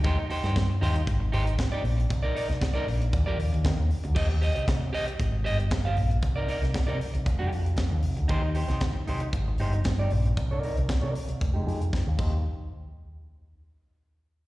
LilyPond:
<<
  \new Staff \with { instrumentName = "Clean electric guitar" } { \time 4/4 \key ees \major \tempo 4 = 116 <ees' g' c''>16 r16 <ees' g' c''>16 <ees' g' c''>16 r8 <ees' g' c''>16 r8. <ees' g' c''>16 r8 <ees' g' d''>16 r8 | r16 <ees' bes' d''>16 <ees' bes' d''>16 r8 <ees' bes' d''>16 r8. <g' bes' d''>16 r4. | <g' c'' ees''>16 r16 <g' c'' ees''>16 <g' c'' ees''>16 r8 <g' c'' ees''>16 r8. <g' c'' ees''>16 r8 <g' c'' f''>16 r8 | r16 <ees' bes' d''>16 <ees' bes' d''>16 r8 <ees' bes' d''>16 r8. <aes ees' g'>8 r4 r16 |
<ees' g' c''>16 r16 <ees' g' c''>16 <ees' g' c''>16 r8 <ees' g' c''>16 r8. <ees' g' c''>16 r8 <ees' g' d''>16 r8 | r16 <ees' bes' d''>16 <ees' bes' d''>16 r8 <ees' bes' d''>8 r8 <aes ees' g'>16 <aes ees' g'>16 r8. <ees' g' c''>16 r16 | r1 | }
  \new Staff \with { instrumentName = "Picked electric bass" } { \clef bass \time 4/4 \key ees \major ees,16 r8 g,8 r16 ees,8 aes,,8 aes,,8 r8 bes,,8 | c,16 r8 c,8 r16 bes,,8 ees,16 f,16 ees,16 ees,16 ees16 ees,16 r16 d,16 | ees,8. c,16 c,8 r8 aes,,8 g,,8 g,,8 bes,,8 | c,8. c,16 r16 c16 r16 c,16 f,,16 f,,16 f,8 r16 ees,16 c,16 d,16 |
ees,8. c,8 r16 c,8 aes,,8 g,,8 g,,8 bes,,8 | c,8. c,16 r16 c16 r16 c,16 f,,16 f,,16 f,8 r16 ees,16 ees,8 | r1 | }
  \new DrumStaff \with { instrumentName = "Drums" } \drummode { \time 4/4 <hh bd>8 hho16 <hh sn>16 <hh bd sn>8 hho16 hh16 <hh bd>8 hho16 hh16 <hh bd sn>8 hho16 hh16 | <hh bd>8 hho16 <hh sn>16 <hh bd sn>8 hho16 hh16 <hh bd>8 hho16 hh16 <hh bd sn>8 hho16 hh16 | <cymc bd>8 hho16 hh16 <hh bd sn>8 hho16 hh16 <hh bd>8 hho16 hh16 <hh bd sn>8 hho16 hh16 | <hh bd>8 hho16 <hh sn>16 <hh bd sn>8 hho16 hh16 <hh bd>8 hho16 hh16 <hh bd sn>8 hho16 hh16 |
<hh bd>8 hho16 <hh sn>16 <hh bd sn>8 hho16 hh16 <hh bd>8 hho16 hh16 <hh bd sn>8 hho16 hh16 | <hh bd>8 hho16 hh16 <hh bd sn>8 hho16 hh16 <hh bd>8 hho16 hh16 <bd sn>8 <cymc bd>8 | r4 r4 r4 r4 | }
>>